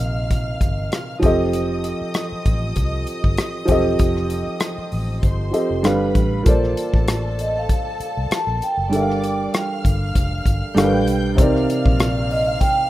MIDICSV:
0, 0, Header, 1, 7, 480
1, 0, Start_track
1, 0, Tempo, 614754
1, 1200, Time_signature, 4, 2, 24, 8
1, 10070, End_track
2, 0, Start_track
2, 0, Title_t, "Violin section"
2, 0, Program_c, 0, 48
2, 0, Note_on_c, 0, 77, 71
2, 0, Note_on_c, 0, 89, 78
2, 928, Note_off_c, 0, 89, 0
2, 930, Note_off_c, 0, 77, 0
2, 958, Note_on_c, 0, 87, 84
2, 963, Note_on_c, 0, 75, 72
2, 4053, Note_off_c, 0, 87, 0
2, 4055, Note_off_c, 0, 75, 0
2, 4087, Note_on_c, 0, 72, 63
2, 4089, Note_on_c, 0, 84, 72
2, 4557, Note_off_c, 0, 72, 0
2, 4558, Note_off_c, 0, 84, 0
2, 4575, Note_on_c, 0, 83, 72
2, 4576, Note_on_c, 0, 71, 65
2, 5041, Note_off_c, 0, 71, 0
2, 5041, Note_off_c, 0, 83, 0
2, 5061, Note_on_c, 0, 69, 76
2, 5062, Note_on_c, 0, 81, 80
2, 6943, Note_off_c, 0, 69, 0
2, 6944, Note_off_c, 0, 81, 0
2, 6961, Note_on_c, 0, 74, 75
2, 6966, Note_on_c, 0, 86, 73
2, 7434, Note_off_c, 0, 74, 0
2, 7437, Note_off_c, 0, 86, 0
2, 7447, Note_on_c, 0, 77, 75
2, 7447, Note_on_c, 0, 89, 81
2, 8387, Note_off_c, 0, 77, 0
2, 8387, Note_off_c, 0, 89, 0
2, 8412, Note_on_c, 0, 91, 78
2, 8413, Note_on_c, 0, 79, 71
2, 8879, Note_off_c, 0, 79, 0
2, 8879, Note_off_c, 0, 91, 0
2, 8887, Note_on_c, 0, 77, 80
2, 8888, Note_on_c, 0, 89, 91
2, 10070, Note_off_c, 0, 77, 0
2, 10070, Note_off_c, 0, 89, 0
2, 10070, End_track
3, 0, Start_track
3, 0, Title_t, "Vibraphone"
3, 0, Program_c, 1, 11
3, 0, Note_on_c, 1, 75, 74
3, 691, Note_off_c, 1, 75, 0
3, 5786, Note_on_c, 1, 75, 71
3, 5840, Note_off_c, 1, 75, 0
3, 5922, Note_on_c, 1, 77, 75
3, 6506, Note_on_c, 1, 81, 93
3, 6517, Note_off_c, 1, 77, 0
3, 6742, Note_on_c, 1, 79, 75
3, 6744, Note_off_c, 1, 81, 0
3, 7663, Note_off_c, 1, 79, 0
3, 9616, Note_on_c, 1, 75, 79
3, 9743, Note_off_c, 1, 75, 0
3, 9841, Note_on_c, 1, 79, 90
3, 10070, Note_off_c, 1, 79, 0
3, 10070, End_track
4, 0, Start_track
4, 0, Title_t, "Grand piano"
4, 0, Program_c, 2, 0
4, 0, Control_c, 2, 64, 127
4, 0, Note_on_c, 2, 48, 54
4, 0, Note_on_c, 2, 60, 45
4, 0, Note_on_c, 2, 63, 51
4, 0, Note_on_c, 2, 70, 48
4, 0, Note_on_c, 2, 75, 60
4, 917, Note_off_c, 2, 48, 0
4, 924, Note_off_c, 2, 60, 0
4, 929, Note_off_c, 2, 63, 0
4, 934, Note_on_c, 2, 53, 79
4, 936, Note_off_c, 2, 70, 0
4, 942, Note_off_c, 2, 75, 0
4, 949, Note_on_c, 2, 60, 66
4, 961, Note_on_c, 2, 67, 68
4, 969, Control_c, 2, 64, 0
4, 974, Note_on_c, 2, 69, 61
4, 983, Note_on_c, 2, 75, 79
4, 1108, Control_c, 2, 64, 127
4, 2839, Note_off_c, 2, 53, 0
4, 2846, Note_off_c, 2, 60, 0
4, 2852, Note_off_c, 2, 67, 0
4, 2854, Note_on_c, 2, 53, 76
4, 2859, Note_off_c, 2, 69, 0
4, 2863, Note_off_c, 2, 75, 0
4, 2867, Note_on_c, 2, 60, 68
4, 2879, Note_on_c, 2, 67, 69
4, 2894, Note_on_c, 2, 69, 67
4, 2903, Note_on_c, 2, 75, 78
4, 4281, Note_off_c, 2, 53, 0
4, 4288, Note_off_c, 2, 60, 0
4, 4294, Note_off_c, 2, 67, 0
4, 4302, Note_off_c, 2, 69, 0
4, 4305, Note_on_c, 2, 53, 51
4, 4306, Note_off_c, 2, 75, 0
4, 4311, Note_on_c, 2, 60, 47
4, 4317, Note_on_c, 2, 67, 53
4, 4322, Note_on_c, 2, 69, 52
4, 4328, Note_on_c, 2, 75, 59
4, 4548, Note_off_c, 2, 69, 0
4, 4551, Note_on_c, 2, 55, 66
4, 4555, Note_on_c, 2, 62, 59
4, 4556, Note_off_c, 2, 53, 0
4, 4558, Note_off_c, 2, 60, 0
4, 4560, Note_on_c, 2, 69, 60
4, 4561, Note_off_c, 2, 67, 0
4, 4567, Note_off_c, 2, 75, 0
4, 4567, Note_on_c, 2, 71, 63
4, 4573, Note_on_c, 2, 77, 70
4, 4576, Control_c, 2, 64, 0
4, 4690, Control_c, 2, 64, 127
4, 5021, Note_on_c, 2, 58, 67
4, 5031, Note_off_c, 2, 69, 0
4, 5032, Note_on_c, 2, 65, 57
4, 5039, Note_off_c, 2, 55, 0
4, 5041, Note_off_c, 2, 62, 0
4, 5043, Note_on_c, 2, 69, 50
4, 5046, Note_off_c, 2, 71, 0
4, 5050, Note_off_c, 2, 77, 0
4, 5056, Control_c, 2, 64, 0
4, 5058, Note_on_c, 2, 72, 57
4, 5067, Note_on_c, 2, 74, 60
4, 5186, Control_c, 2, 64, 127
4, 6923, Note_off_c, 2, 58, 0
4, 6929, Note_off_c, 2, 65, 0
4, 6934, Note_off_c, 2, 69, 0
4, 6942, Note_off_c, 2, 72, 0
4, 6945, Note_on_c, 2, 55, 51
4, 6946, Note_off_c, 2, 74, 0
4, 6955, Note_on_c, 2, 62, 50
4, 6968, Note_on_c, 2, 69, 51
4, 6978, Control_c, 2, 64, 0
4, 6980, Note_on_c, 2, 70, 47
4, 6994, Note_on_c, 2, 76, 48
4, 7035, Note_off_c, 2, 76, 0
4, 7042, Note_on_c, 2, 77, 59
4, 7132, Control_c, 2, 64, 127
4, 8366, Note_off_c, 2, 55, 0
4, 8371, Note_off_c, 2, 62, 0
4, 8378, Note_off_c, 2, 69, 0
4, 8384, Note_off_c, 2, 70, 0
4, 8390, Note_on_c, 2, 55, 73
4, 8400, Note_on_c, 2, 62, 65
4, 8403, Note_off_c, 2, 77, 0
4, 8403, Note_on_c, 2, 69, 61
4, 8412, Note_on_c, 2, 70, 50
4, 8415, Note_on_c, 2, 77, 79
4, 8416, Control_c, 2, 64, 0
4, 8461, Note_on_c, 2, 71, 66
4, 8464, Note_off_c, 2, 70, 0
4, 8549, Control_c, 2, 64, 127
4, 8863, Note_on_c, 2, 48, 67
4, 8875, Note_on_c, 2, 60, 65
4, 8877, Note_off_c, 2, 55, 0
4, 8883, Note_off_c, 2, 62, 0
4, 8884, Note_off_c, 2, 69, 0
4, 8889, Note_on_c, 2, 63, 61
4, 8890, Note_off_c, 2, 77, 0
4, 8895, Control_c, 2, 64, 0
4, 8904, Note_on_c, 2, 70, 62
4, 8913, Note_off_c, 2, 71, 0
4, 8913, Note_on_c, 2, 74, 66
4, 9010, Control_c, 2, 64, 127
4, 10070, Note_off_c, 2, 48, 0
4, 10070, Note_off_c, 2, 60, 0
4, 10070, Note_off_c, 2, 63, 0
4, 10070, Note_off_c, 2, 70, 0
4, 10070, Note_off_c, 2, 74, 0
4, 10070, End_track
5, 0, Start_track
5, 0, Title_t, "Fingered electric bass"
5, 0, Program_c, 3, 33
5, 0, Note_on_c, 3, 34, 81
5, 423, Note_off_c, 3, 34, 0
5, 478, Note_on_c, 3, 31, 68
5, 692, Note_off_c, 3, 31, 0
5, 957, Note_on_c, 3, 29, 91
5, 1500, Note_off_c, 3, 29, 0
5, 1920, Note_on_c, 3, 33, 75
5, 2134, Note_off_c, 3, 33, 0
5, 2158, Note_on_c, 3, 36, 82
5, 2373, Note_off_c, 3, 36, 0
5, 2530, Note_on_c, 3, 31, 72
5, 2629, Note_off_c, 3, 31, 0
5, 2879, Note_on_c, 3, 28, 76
5, 3094, Note_off_c, 3, 28, 0
5, 3119, Note_on_c, 3, 29, 90
5, 3450, Note_off_c, 3, 29, 0
5, 3846, Note_on_c, 3, 33, 78
5, 4058, Note_off_c, 3, 33, 0
5, 4084, Note_on_c, 3, 31, 81
5, 4298, Note_off_c, 3, 31, 0
5, 4454, Note_on_c, 3, 29, 62
5, 4561, Note_off_c, 3, 29, 0
5, 4561, Note_on_c, 3, 31, 88
5, 4776, Note_off_c, 3, 31, 0
5, 4802, Note_on_c, 3, 33, 75
5, 5017, Note_off_c, 3, 33, 0
5, 5046, Note_on_c, 3, 34, 98
5, 5259, Note_off_c, 3, 34, 0
5, 5415, Note_on_c, 3, 33, 85
5, 5977, Note_off_c, 3, 33, 0
5, 6381, Note_on_c, 3, 36, 74
5, 6477, Note_off_c, 3, 36, 0
5, 6613, Note_on_c, 3, 34, 70
5, 6713, Note_off_c, 3, 34, 0
5, 6851, Note_on_c, 3, 30, 69
5, 6967, Note_off_c, 3, 30, 0
5, 6967, Note_on_c, 3, 31, 100
5, 7393, Note_off_c, 3, 31, 0
5, 7689, Note_on_c, 3, 31, 77
5, 7901, Note_off_c, 3, 31, 0
5, 7928, Note_on_c, 3, 29, 90
5, 8140, Note_off_c, 3, 29, 0
5, 8162, Note_on_c, 3, 31, 82
5, 8279, Note_off_c, 3, 31, 0
5, 8400, Note_on_c, 3, 31, 101
5, 8528, Note_off_c, 3, 31, 0
5, 8528, Note_on_c, 3, 33, 85
5, 8636, Note_off_c, 3, 33, 0
5, 8636, Note_on_c, 3, 35, 96
5, 8886, Note_off_c, 3, 35, 0
5, 8886, Note_on_c, 3, 36, 107
5, 9099, Note_off_c, 3, 36, 0
5, 9260, Note_on_c, 3, 34, 96
5, 9817, Note_off_c, 3, 34, 0
5, 10070, End_track
6, 0, Start_track
6, 0, Title_t, "Muted fingered electric bass strokes"
6, 1572, Note_on_c, 9, 29, 45
6, 1650, Note_off_c, 9, 29, 0
6, 1814, Note_on_c, 9, 29, 44
6, 1892, Note_off_c, 9, 29, 0
6, 3491, Note_on_c, 9, 29, 41
6, 3570, Note_off_c, 9, 29, 0
6, 3733, Note_on_c, 9, 29, 43
6, 3811, Note_off_c, 9, 29, 0
6, 6247, Note_on_c, 9, 29, 41
6, 6325, Note_off_c, 9, 29, 0
6, 6487, Note_on_c, 9, 29, 42
6, 6565, Note_off_c, 9, 29, 0
6, 10070, End_track
7, 0, Start_track
7, 0, Title_t, "Drums"
7, 0, Note_on_c, 9, 42, 63
7, 75, Note_off_c, 9, 42, 0
7, 239, Note_on_c, 9, 36, 83
7, 239, Note_on_c, 9, 42, 77
7, 317, Note_off_c, 9, 42, 0
7, 318, Note_off_c, 9, 36, 0
7, 475, Note_on_c, 9, 36, 78
7, 478, Note_on_c, 9, 42, 61
7, 553, Note_off_c, 9, 36, 0
7, 556, Note_off_c, 9, 42, 0
7, 718, Note_on_c, 9, 42, 76
7, 725, Note_on_c, 9, 37, 96
7, 796, Note_off_c, 9, 42, 0
7, 803, Note_off_c, 9, 37, 0
7, 957, Note_on_c, 9, 42, 62
7, 959, Note_on_c, 9, 36, 95
7, 1035, Note_off_c, 9, 42, 0
7, 1037, Note_off_c, 9, 36, 0
7, 1198, Note_on_c, 9, 42, 84
7, 1276, Note_off_c, 9, 42, 0
7, 1437, Note_on_c, 9, 42, 73
7, 1515, Note_off_c, 9, 42, 0
7, 1672, Note_on_c, 9, 42, 87
7, 1678, Note_on_c, 9, 37, 104
7, 1750, Note_off_c, 9, 42, 0
7, 1756, Note_off_c, 9, 37, 0
7, 1918, Note_on_c, 9, 42, 61
7, 1919, Note_on_c, 9, 36, 84
7, 1996, Note_off_c, 9, 42, 0
7, 1997, Note_off_c, 9, 36, 0
7, 2154, Note_on_c, 9, 42, 83
7, 2160, Note_on_c, 9, 36, 72
7, 2232, Note_off_c, 9, 42, 0
7, 2238, Note_off_c, 9, 36, 0
7, 2396, Note_on_c, 9, 42, 59
7, 2474, Note_off_c, 9, 42, 0
7, 2530, Note_on_c, 9, 36, 78
7, 2608, Note_off_c, 9, 36, 0
7, 2635, Note_on_c, 9, 42, 77
7, 2642, Note_on_c, 9, 37, 99
7, 2713, Note_off_c, 9, 42, 0
7, 2721, Note_off_c, 9, 37, 0
7, 2872, Note_on_c, 9, 42, 67
7, 2878, Note_on_c, 9, 36, 82
7, 2950, Note_off_c, 9, 42, 0
7, 2956, Note_off_c, 9, 36, 0
7, 3116, Note_on_c, 9, 42, 82
7, 3120, Note_on_c, 9, 36, 98
7, 3194, Note_off_c, 9, 42, 0
7, 3198, Note_off_c, 9, 36, 0
7, 3254, Note_on_c, 9, 37, 29
7, 3332, Note_off_c, 9, 37, 0
7, 3357, Note_on_c, 9, 42, 67
7, 3435, Note_off_c, 9, 42, 0
7, 3592, Note_on_c, 9, 42, 84
7, 3597, Note_on_c, 9, 37, 101
7, 3670, Note_off_c, 9, 42, 0
7, 3675, Note_off_c, 9, 37, 0
7, 3841, Note_on_c, 9, 46, 41
7, 3919, Note_off_c, 9, 46, 0
7, 4083, Note_on_c, 9, 42, 79
7, 4084, Note_on_c, 9, 36, 74
7, 4161, Note_off_c, 9, 42, 0
7, 4162, Note_off_c, 9, 36, 0
7, 4325, Note_on_c, 9, 42, 60
7, 4403, Note_off_c, 9, 42, 0
7, 4560, Note_on_c, 9, 42, 81
7, 4567, Note_on_c, 9, 37, 93
7, 4638, Note_off_c, 9, 42, 0
7, 4645, Note_off_c, 9, 37, 0
7, 4803, Note_on_c, 9, 36, 87
7, 4804, Note_on_c, 9, 42, 64
7, 4881, Note_off_c, 9, 36, 0
7, 4882, Note_off_c, 9, 42, 0
7, 5043, Note_on_c, 9, 42, 87
7, 5045, Note_on_c, 9, 36, 106
7, 5121, Note_off_c, 9, 42, 0
7, 5123, Note_off_c, 9, 36, 0
7, 5184, Note_on_c, 9, 37, 28
7, 5262, Note_off_c, 9, 37, 0
7, 5289, Note_on_c, 9, 42, 73
7, 5367, Note_off_c, 9, 42, 0
7, 5415, Note_on_c, 9, 36, 86
7, 5493, Note_off_c, 9, 36, 0
7, 5526, Note_on_c, 9, 42, 83
7, 5531, Note_on_c, 9, 37, 110
7, 5604, Note_off_c, 9, 42, 0
7, 5609, Note_off_c, 9, 37, 0
7, 5769, Note_on_c, 9, 42, 67
7, 5847, Note_off_c, 9, 42, 0
7, 6007, Note_on_c, 9, 36, 79
7, 6007, Note_on_c, 9, 42, 77
7, 6085, Note_off_c, 9, 36, 0
7, 6085, Note_off_c, 9, 42, 0
7, 6250, Note_on_c, 9, 42, 61
7, 6329, Note_off_c, 9, 42, 0
7, 6490, Note_on_c, 9, 42, 83
7, 6497, Note_on_c, 9, 37, 99
7, 6568, Note_off_c, 9, 42, 0
7, 6575, Note_off_c, 9, 37, 0
7, 6731, Note_on_c, 9, 42, 64
7, 6809, Note_off_c, 9, 42, 0
7, 6970, Note_on_c, 9, 42, 85
7, 7049, Note_off_c, 9, 42, 0
7, 7110, Note_on_c, 9, 37, 30
7, 7188, Note_off_c, 9, 37, 0
7, 7212, Note_on_c, 9, 42, 70
7, 7290, Note_off_c, 9, 42, 0
7, 7448, Note_on_c, 9, 42, 83
7, 7454, Note_on_c, 9, 37, 106
7, 7527, Note_off_c, 9, 42, 0
7, 7532, Note_off_c, 9, 37, 0
7, 7689, Note_on_c, 9, 36, 79
7, 7696, Note_on_c, 9, 42, 66
7, 7767, Note_off_c, 9, 36, 0
7, 7774, Note_off_c, 9, 42, 0
7, 7928, Note_on_c, 9, 36, 77
7, 7930, Note_on_c, 9, 42, 85
7, 8007, Note_off_c, 9, 36, 0
7, 8008, Note_off_c, 9, 42, 0
7, 8164, Note_on_c, 9, 36, 76
7, 8170, Note_on_c, 9, 42, 65
7, 8242, Note_off_c, 9, 36, 0
7, 8249, Note_off_c, 9, 42, 0
7, 8412, Note_on_c, 9, 42, 91
7, 8419, Note_on_c, 9, 37, 104
7, 8490, Note_off_c, 9, 42, 0
7, 8497, Note_off_c, 9, 37, 0
7, 8648, Note_on_c, 9, 42, 61
7, 8726, Note_off_c, 9, 42, 0
7, 8888, Note_on_c, 9, 36, 111
7, 8889, Note_on_c, 9, 42, 93
7, 8966, Note_off_c, 9, 36, 0
7, 8967, Note_off_c, 9, 42, 0
7, 9029, Note_on_c, 9, 37, 31
7, 9107, Note_off_c, 9, 37, 0
7, 9134, Note_on_c, 9, 42, 79
7, 9212, Note_off_c, 9, 42, 0
7, 9257, Note_on_c, 9, 36, 86
7, 9335, Note_off_c, 9, 36, 0
7, 9367, Note_on_c, 9, 42, 88
7, 9372, Note_on_c, 9, 37, 103
7, 9445, Note_off_c, 9, 42, 0
7, 9451, Note_off_c, 9, 37, 0
7, 9610, Note_on_c, 9, 46, 46
7, 9689, Note_off_c, 9, 46, 0
7, 9846, Note_on_c, 9, 36, 77
7, 9848, Note_on_c, 9, 42, 86
7, 9924, Note_off_c, 9, 36, 0
7, 9926, Note_off_c, 9, 42, 0
7, 10070, End_track
0, 0, End_of_file